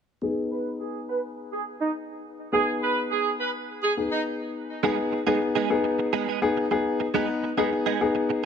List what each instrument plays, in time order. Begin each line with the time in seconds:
0.22 grand piano B3 D#4 G#4, horn section G#4
0.51 horn section B4
0.80 horn section G#4
1.09 horn section B4
1.52 horn section G#4
1.81 horn section D#4
2.52 grand piano B3 D#4 G#4, horn section G#4
2.82 horn section B4
3.11 horn section G#4
3.40 horn section B4
3.83 horn section G#4
3.97 grand piano B3 D#4 G#4
4.12 horn section D#4
4.83 clean electric guitar G#3 B3 D#4 G#4, grand piano B3 D#4 G#4
4.98 muted clean electric guitar stroke
5.12 muted clean electric guitar stroke
5.26 clean electric guitar G#3 B3 D#4 G#4, grand piano B3 D#4 G#4
5.41 muted clean electric guitar stroke
5.55 clean electric guitar G#3 B3 D#4 G#4
5.70 grand piano B3 D#4 G#4, muted clean electric guitar stroke
5.84 muted clean electric guitar stroke
5.99 muted clean electric guitar stroke
6.13 clean electric guitar G#3 B3 D#4 G#4
6.28 clean electric guitar G#3 B3 D#4 G#4
6.42 grand piano B3 D#4 G#4, muted clean electric guitar stroke
6.57 muted clean electric guitar stroke
6.71 grand piano B3 D#4 G#4, muted clean electric guitar stroke
7.00 muted clean electric guitar stroke
7.14 clean electric guitar G#3 B3 D#4 G#4, grand piano B3 D#4 B4
7.29 muted clean electric guitar stroke
7.43 muted clean electric guitar stroke
7.57 clean electric guitar G#3 B3 D#4 G#4, grand piano B3 D#4 G#4
7.72 muted clean electric guitar stroke
7.86 clean electric guitar G#3 B3 D#4 G#4
8.01 grand piano B3 D#4 G#4, muted clean electric guitar stroke
8.15 muted clean electric guitar stroke
8.29 muted clean electric guitar stroke